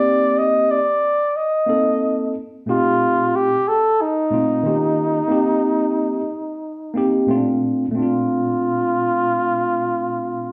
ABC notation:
X:1
M:4/4
L:1/8
Q:"Swing 16ths" 1/4=91
K:Bb
V:1 name="Flugelhorn"
d e d2 e3 z | F2 G A E4- | E6 z2 | F8 |]
V:2 name="Tine electric piano"
[B,CEG]2 z3 [B,CEA]2 z | [B,,A,CEG]3 z2 [B,,A,CEF] [E,B,_DFG]2 | [B,CEG]3 z2 [B,CEG] [B,,A,C_D=DF]2 | [B,,A,CDF]8 |]